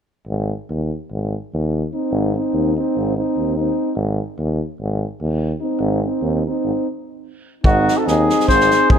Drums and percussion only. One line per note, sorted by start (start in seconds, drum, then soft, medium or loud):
7.64 kick medium
7.88 snare soft
8.08 snare soft
8.30 snare soft
8.40 snare soft
8.48 kick medium
8.48 snare soft
8.60 snare soft
8.71 snare soft
8.90 kick medium